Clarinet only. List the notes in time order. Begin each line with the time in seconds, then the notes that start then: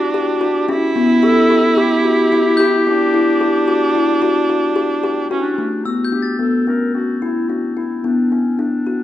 Already playing: F#4
0.42 G4
1.23 A4
1.78 G4
5.30 D4
5.85 F#4
6.13 G4
6.40 A4
6.67 A#4
6.94 F#4
7.22 E4
7.48 F#4
7.76 E4
8.04 D4
8.30 C#4
8.59 D4